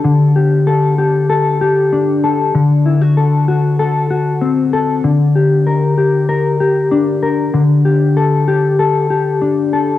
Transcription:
\new Staff \with { instrumentName = "Clean electric guitar" } { \time 4/4 \key d \mixolydian \tempo 4 = 96 <d d' g' a'>8 g'8 a'8 g'8 a'8 g'8 d'8 a'8 | d8 e'16 fis'16 a'8 fis'8 a'8 fis'8 c'8 a'8 | d8 g'8 bes'8 g'8 bes'8 g'8 d'8 bes'8 | d8 g'8 a'8 g'8 a'8 g'8 d'8 a'8 | }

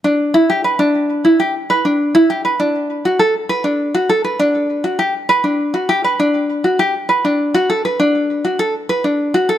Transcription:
\new Staff \with { instrumentName = "Ukulele" } { \time 4/4 \key e \minor \tempo 4 = 100 d'8 e'16 g'16 b'16 d'8. e'16 g'16 r16 b'16 d'8 e'16 g'16 | b'16 d'8. fis'16 a'16 r16 b'16 d'8 fis'16 a'16 b'16 d'8. | fis'16 g'16 r16 b'16 d'8 fis'16 g'16 b'16 d'8. fis'16 g'16 r16 b'16 | d'8 fis'16 a'16 b'16 d'8. fis'16 a'16 r16 b'16 d'8 fis'16 a'16 | }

